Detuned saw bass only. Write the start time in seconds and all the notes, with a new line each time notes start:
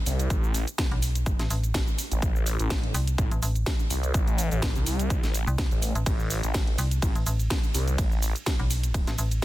0.06 C2
0.30 A1
2.11 A1
2.22 A1
2.59 A1
3.18 A1
3.90 C2
4.14 A1
4.51 A1
4.76 C2
4.86 C2
5.23 A1
5.71 A1
6.06 A1
6.43 A1
7.02 A1
7.74 C2
7.98 A1